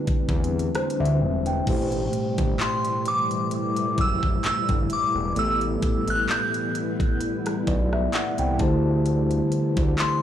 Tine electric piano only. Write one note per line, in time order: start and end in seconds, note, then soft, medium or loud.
0.00 0.70 D3 medium
0.00 0.71 A3 medium
0.00 0.71 E4 medium
0.00 0.72 G4 medium
0.00 0.26 B4 medium
0.76 0.99 C5 medium
1.00 1.44 E5 medium
1.47 1.90 G5 medium
1.66 5.32 A2 medium
1.66 5.33 B2 medium
1.66 5.32 A3 medium
1.66 5.33 G4 medium
1.66 5.34 C5 medium
5.35 8.55 A2 medium
5.35 8.55 A3 medium
5.35 8.56 B3 medium
5.35 8.56 G4 medium
5.39 8.57 A4 medium
7.68 7.91 D5 medium
7.93 8.12 E5 medium
8.14 8.37 F#5 medium
8.39 8.59 G5 medium
8.58 10.22 D3 medium
8.58 10.22 A3 medium
8.58 10.22 E4 medium
8.58 10.22 G4 medium
8.58 9.03 A5 medium
8.62 10.22 C5 medium